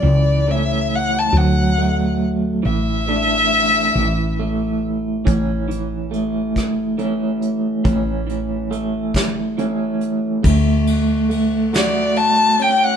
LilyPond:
<<
  \new Staff \with { instrumentName = "Violin" } { \time 6/8 \key a \mixolydian \tempo 4. = 46 d''8 e''8 fis''16 a''16 fis''4 r8 | e''2~ e''8 r8 | r2. | r2. |
r4. d''8 a''8 g''16 fis''16 | }
  \new Staff \with { instrumentName = "Clean electric guitar" } { \time 6/8 \key a \mixolydian e8 <e a cis'>4 fis8 a4 | e8 <e a d'>4 e8 a4 | <e cis'>8 e8 a4 <e a cis'>4 | <e cis'>8 e8 a4 <e a cis'>4 |
a4 a8 <a fis'>4 cis'8 | }
  \new Staff \with { instrumentName = "Fretless electric bass" } { \clef bass \time 6/8 \key a \mixolydian cis,4. d,4. | a,,4. a,,4. | a,,2. | a,,2. |
d,2. | }
  \new DrumStaff \with { instrumentName = "Drums" } \drummode { \time 6/8 r4. r4. | r4. r4. | <hh bd>8 hh8 hh8 <hh bd ss>8 hh8 hh8 | <hh bd>8 hh8 hh8 <hh bd sn>8 hh8 hh8 |
<bd cymr>8 cymr8 cymr8 <cymr sn>8 cymr8 cymr8 | }
>>